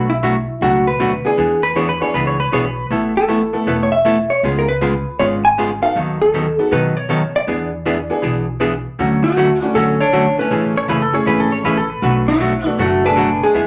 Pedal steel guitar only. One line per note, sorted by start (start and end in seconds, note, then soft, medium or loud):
1.63 1.75 B4 medium
1.76 1.88 C#5 medium
1.89 2.01 B4 medium
2.02 2.14 C#5 medium
2.14 2.26 B4 medium
2.27 2.39 C#5 medium
2.40 2.52 B4 medium
2.53 2.65 C#5 medium
2.65 2.86 B4 medium
10.77 10.89 C#5 medium
10.90 11.02 B4 medium
11.02 11.14 A4 medium
11.15 11.27 C#5 medium
11.27 11.39 B4 medium
11.40 11.52 A4 medium
11.52 11.64 C#5 medium
11.65 11.77 B4 medium
11.77 11.90 A4 medium
11.90 12.15 B4 medium